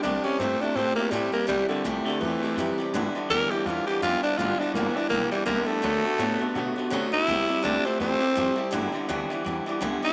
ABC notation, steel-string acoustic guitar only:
X:1
M:4/4
L:1/8
Q:"Swing" 1/4=166
K:G
V:1 name="Steel-string acoustic guitar"
[C,E,A,EG] [A,EG] [C,E,A,EG] [A,EG] [E,A,EG] [A,EG] [C,E,A,EG] [A,EG] | [C,E,A,EG] [A,EG] [C,E,A,EG] [A,EG] [E,A,EG] [A,EG] [C,E,A,EG] [A,EG] | [G,,D,E,G,B,E] [E,G,B,E] [G,,D,E,G,B,E] [E,G,B,E] [E,G,B,E] [E,G,B,E] [G,,D,E,G,B,E] [E,G,B,E] | [G,,D,E,G,B,E] [E,G,B,E] [G,,D,E,G,B,E] [E,G,B,E] [E,G,B,E] [E,G,B,E] [G,,D,E,G,B,E] [E,G,B,E] |
[D,F,A,B,F] [A,B,F] [D,F,A,B,F] [A,B,F] [F,A,B,F] [A,B,F] [D,F,A,B,F] [A,B,F] | [C,E,A,EG] [A,EG] [C,E,A,EG] [A,EG] [E,A,EG] [A,EG] [C,E,A,EG] [A,EG] | [G,,D,E,G,B,E] [E,G,B,E] [G,,D,E,G,B,E] [E,G,B,E] [E,G,B,E] [E,G,B,E] [G,,D,E,G,B,E] [E,G,B,E] |]